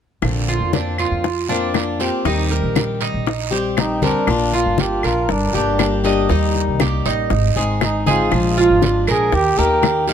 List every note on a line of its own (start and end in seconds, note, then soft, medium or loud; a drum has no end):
0.22 0.59 A#1 medium
0.22 0.72 D3 medium
0.22 0.73 A#3 medium
0.22 0.73 C4 medium
0.22 0.73 F4 medium
0.22 high bongo medium
0.22 high conga soft
0.22 long guiro medium
0.22 claves medium
0.48 0.73 F4 medium
0.48 high conga soft
0.60 1.09 F2 medium
0.73 1.23 D3 soft
0.73 1.24 A#3 soft
0.73 1.24 C4 soft
0.73 0.98 D4 medium
0.73 1.24 F4 soft
0.73 high bongo soft
0.73 high conga medium
0.73 short guiro medium
0.98 1.48 F4 medium
0.98 high conga soft
0.98 short guiro medium
0.98 claves medium
1.11 2.09 F2 medium
1.24 muted steel-string acoustic guitar stroke soft
1.24 high bongo medium
1.24 high conga soft
1.24 long guiro medium
1.49 1.74 A#3 soft
1.49 1.75 C4 medium
1.49 1.99 D4 medium
1.49 1.74 F4 medium
1.49 high conga soft
1.74 1.99 D3 soft
1.74 1.99 A#3 soft
1.74 1.99 C4 soft
1.74 1.98 F4 soft
1.74 high bongo medium
1.74 low bongo medium
1.74 high conga soft
1.74 short guiro medium
1.74 claves medium
2.00 2.25 A#3 soft
2.00 2.25 C4 medium
2.00 2.24 F4 medium
2.00 2.25 G4 medium
2.00 short guiro medium
2.25 2.61 D#2 medium
2.25 2.74 D#3 medium
2.25 2.75 G3 medium
2.25 2.76 C4 medium
2.25 2.50 D#4 medium
2.25 2.76 G4 medium
2.25 high bongo medium
2.25 high conga soft
2.25 long guiro medium
2.51 3.00 A#4 medium
2.51 high bongo soft
2.51 high conga soft
2.63 3.11 A#1 medium
2.75 3.25 D#3 soft
2.75 3.26 G3 soft
2.75 3.26 C4 soft
2.75 3.27 G4 soft
2.75 high bongo medium
2.75 high conga medium
2.75 short guiro medium
2.75 claves medium
3.01 3.51 D#4 medium
3.01 high conga soft
3.01 short guiro medium
3.14 4.11 A#1 medium
3.26 muted steel-string acoustic guitar stroke medium
3.26 high bongo medium
3.26 high conga soft
3.26 long guiro medium
3.51 3.76 G3 soft
3.51 3.76 C4 medium
3.51 3.76 G4 medium
3.51 4.01 G4 medium
3.51 high bongo soft
3.51 high conga soft
3.77 4.01 D#3 soft
3.77 4.02 G3 soft
3.77 4.02 C4 medium
3.77 4.05 D#4 medium
3.77 4.01 G4 soft
3.77 high bongo medium
3.77 low bongo medium
3.77 high conga soft
3.77 short guiro medium
3.77 claves medium
4.02 4.28 G3 medium
4.02 4.27 C4 medium
4.02 4.57 D4 medium
4.02 4.27 G4 medium
4.02 4.27 A#4 medium
4.02 high bongo soft
4.02 high conga medium
4.02 short guiro medium
4.27 4.64 A#1 medium
4.27 4.77 D3 medium
4.27 4.78 A#3 medium
4.27 4.78 D4 medium
4.27 4.78 F4 medium
4.27 high bongo medium
4.27 high conga soft
4.27 long guiro medium
4.27 claves medium
4.52 5.02 F4 medium
4.52 4.82 F4 medium
4.52 high conga soft
4.66 5.02 G1 medium
4.78 5.28 D3 soft
4.78 5.28 A#3 medium
4.78 5.28 D4 soft
4.78 5.29 F4 soft
4.78 5.05 G4 medium
4.78 high bongo medium
4.78 high conga medium
4.78 short guiro medium
5.03 5.28 A#1 medium
5.03 5.33 F4 medium
5.03 5.53 A#4 medium
5.03 high conga soft
5.03 short guiro medium
5.03 claves medium
5.29 5.53 G1 medium
5.29 5.56 D4 medium
5.29 muted steel-string acoustic guitar stroke medium
5.29 high bongo medium
5.29 high conga soft
5.29 long guiro medium
5.54 6.26 G1 medium
5.54 5.78 G3 soft
5.54 5.79 A#3 medium
5.54 5.78 D4 medium
5.54 6.02 D4 medium
5.54 5.78 G4 medium
5.54 6.03 G4 medium
5.54 high conga soft
5.79 6.03 G3 soft
5.79 6.04 A#3 soft
5.79 6.03 D4 medium
5.79 6.03 G4 soft
5.79 high bongo medium
5.79 low bongo medium
5.79 high conga soft
5.79 short guiro medium
5.79 claves medium
6.04 6.28 G3 medium
6.04 6.29 A#3 soft
6.04 6.29 D4 medium
6.04 6.28 G4 medium
6.04 6.29 D#5 medium
6.04 short guiro medium
6.29 6.66 D#2 medium
6.29 6.79 D#3 medium
6.29 6.78 G3 medium
6.29 6.79 A#3 medium
6.29 6.79 D#4 medium
6.29 6.80 D#4 medium
6.29 6.80 G4 medium
6.29 high bongo medium
6.29 high conga soft
6.29 long guiro medium
6.55 high bongo soft
6.55 high conga soft
6.68 7.04 C2 medium
6.79 7.29 G3 soft
6.79 7.30 A#3 medium
6.79 7.30 D#4 medium
6.79 7.05 G4 medium
6.79 7.30 G4 medium
6.79 high bongo medium
6.79 high conga medium
6.79 short guiro medium
6.79 claves medium
7.06 7.30 A1 medium
7.06 7.55 D#4 medium
7.06 high conga soft
7.06 short guiro medium
7.30 7.55 G#1 medium
7.30 muted steel-string acoustic guitar stroke soft
7.30 high bongo medium
7.30 high conga soft
7.30 long guiro medium
7.56 8.28 G#1 medium
7.56 7.80 G#3 medium
7.56 7.81 C4 soft
7.56 7.81 D#4 medium
7.56 7.80 G#4 medium
7.56 8.05 G#4 medium
7.56 high bongo soft
7.56 high conga soft
7.81 8.06 G#3 soft
7.81 8.06 C4 soft
7.81 8.06 D#4 medium
7.81 8.05 G#4 medium
7.81 high bongo medium
7.81 low bongo medium
7.81 high conga soft
7.81 short guiro medium
7.81 claves medium
8.06 8.31 G#3 medium
8.06 8.31 C4 medium
8.06 8.31 D#4 medium
8.06 8.55 F4 medium
8.06 8.31 G#4 medium
8.06 8.56 G#4 medium
8.06 high bongo soft
8.06 high conga medium
8.06 short guiro medium
8.31 8.68 A#1 medium
8.31 8.80 F3 medium
8.31 8.81 G#3 medium
8.31 8.82 D4 medium
8.31 8.82 F4 medium
8.31 high bongo medium
8.31 high conga soft
8.31 long guiro medium
8.31 claves medium
8.57 9.06 F4 medium
8.57 9.05 F4 medium
8.57 high conga soft
8.70 9.06 G#1 medium
8.81 9.31 F3 soft
8.81 9.32 G#3 soft
8.81 9.32 D4 soft
8.81 9.32 F4 soft
8.81 high bongo medium
8.81 high conga medium
8.81 short guiro medium
9.07 9.32 A#1 medium
9.07 9.36 G#4 medium
9.07 9.57 A#4 medium
9.07 high conga soft
9.07 short guiro medium
9.07 claves medium
9.32 9.57 D#2 loud
9.32 9.60 G4 medium
9.32 muted steel-string acoustic guitar stroke soft
9.32 high bongo medium
9.32 high conga soft
9.32 long guiro medium
9.57 10.13 D#2 medium
9.57 9.82 A#3 soft
9.57 9.82 D#4 medium
9.57 9.82 G4 medium
9.57 10.07 G4 medium
9.57 10.09 A#4 loud
9.57 high conga soft
9.82 10.07 D#3 medium
9.82 10.07 A#3 soft
9.82 10.07 D#4 medium
9.82 10.06 G4 medium
9.82 high bongo medium
9.82 low bongo medium
9.82 high conga soft
9.82 short guiro medium
9.82 claves medium
10.08 10.13 A#3 soft
10.08 10.13 D#4 medium
10.08 10.13 G4 medium
10.08 10.13 F5 medium
10.08 short guiro medium